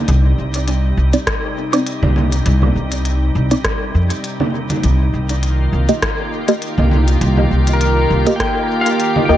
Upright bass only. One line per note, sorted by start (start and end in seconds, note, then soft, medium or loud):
0.08 0.35 C2 loud
0.38 0.95 C2 medium
0.97 1.12 C2 medium
2.02 2.43 C2 medium
2.46 2.72 C2 loud
2.76 3.33 C2 medium
3.35 3.49 C2 medium
3.95 4.09 F2 medium
4.84 5.10 C2 medium
5.13 5.70 C2 medium
5.73 5.87 C2 medium
6.78 7.19 C2 medium
7.21 7.48 C2 loud
7.51 8.08 C2 medium
8.10 8.25 C2 medium
9.29 9.37 D#2 medium